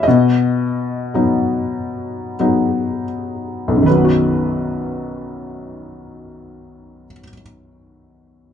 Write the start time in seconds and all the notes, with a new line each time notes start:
0.03 D#5
0.08 B2
1.14 F#3 B3 D#4
2.40 F#3 B3 D#4
3.68 B1
3.75 F#2
3.83 D#3 B4
3.90 F#3
3.97 B3
4.05 F#4